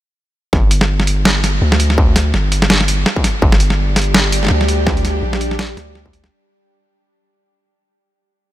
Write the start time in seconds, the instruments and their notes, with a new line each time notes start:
0.53 808-style bass G1, kick, snare
0.71 closed hi-hat
0.81 snare
1.00 snare
1.07 closed hi-hat
1.25 snare
1.44 snare, closed hi-hat
1.62 808-style bass D2
1.72 snare
1.80 closed hi-hat
1.90 snare
1.98 kick
2.16 snare, closed hi-hat
2.34 808-style bass G1, snare
2.52 closed hi-hat
2.62 snare
2.70 snare
2.81 snare
2.88 closed hi-hat
3.06 snare
3.16 kick
3.24 snare, closed hi-hat
3.42 808-style bass G1, synth drone G3 D4 G4, kick
3.52 snare
3.60 closed hi-hat
3.70 snare
3.96 snare, closed hi-hat
3.99 closed hi-hat
4.02 closed hi-hat
4.04 closed hi-hat
4.14 snare
4.32 closed hi-hat
4.43 snare
4.45 snare
4.47 snare
4.48 808-style bass D2, snare
4.61 snare
4.68 closed hi-hat
4.87 kick, snare
4.97 closed hi-hat
5.05 snare, closed hi-hat
5.23 808-style bass A#1
5.33 snare
5.41 closed hi-hat
5.51 snare
5.59 snare
5.77 808-style bass D2, snare, closed hi-hat
5.95 snare
6.06 kick
6.13 closed hi-hat
6.24 snare